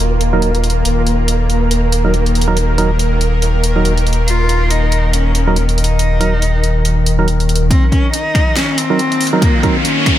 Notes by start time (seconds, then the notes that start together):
Already playing: D#1 D#3 A#3 F4 A#4
0.21 closed hi-hat
0.33 F#3 D#4 A#4
0.42 closed hi-hat
0.55 closed hi-hat
0.64 closed hi-hat
0.70 closed hi-hat
0.85 D#1 A#4, closed hi-hat
1.07 closed hi-hat
1.28 closed hi-hat
1.50 closed hi-hat
1.71 closed hi-hat
1.92 closed hi-hat
2.05 F#3 D#4 A#4
2.14 closed hi-hat
2.26 closed hi-hat
2.35 closed hi-hat
2.41 closed hi-hat
2.48 F#3 D#4 A#4
2.57 closed hi-hat
2.78 F#3 D#4 A#4, closed hi-hat
2.99 closed hi-hat
3.21 closed hi-hat
3.42 closed hi-hat
3.64 closed hi-hat
3.76 F#3 D#4 A#4
3.85 closed hi-hat
3.97 closed hi-hat
4.07 closed hi-hat
4.13 closed hi-hat
4.28 F4, closed hi-hat
4.49 closed hi-hat
4.70 D#4, closed hi-hat
4.92 closed hi-hat
5.13 C#4, closed hi-hat
5.35 closed hi-hat
5.47 F#3 D#4 A#4
5.56 closed hi-hat
5.69 closed hi-hat
5.78 D#4, closed hi-hat
5.84 closed hi-hat
5.99 closed hi-hat
6.21 F#3 D#4 A#4, closed hi-hat
6.42 closed hi-hat
6.64 closed hi-hat
6.85 closed hi-hat
7.06 closed hi-hat
7.19 F#3 D#4 A#4
7.28 closed hi-hat
7.40 closed hi-hat
7.49 closed hi-hat
7.56 closed hi-hat
7.71 D#3 A#3 C4 F4, kick, closed hi-hat, riser
7.92 C#4, kick, closed hi-hat
8.13 D#4, closed hi-hat
8.35 finger snap, kick, closed hi-hat
8.56 C#4, snare, closed hi-hat
8.77 C4, closed hi-hat
8.90 F#3 D#4 A#4
8.99 closed hi-hat
9.12 closed hi-hat
9.21 open hi-hat
9.27 closed hi-hat
9.33 F#3 D#4 A#4
9.41 A#3, kick, closed hi-hat
9.63 F#3 C4 D#4 A#4, kick, closed hi-hat
9.84 C#4, closed hi-hat
10.06 finger snap, kick, closed hi-hat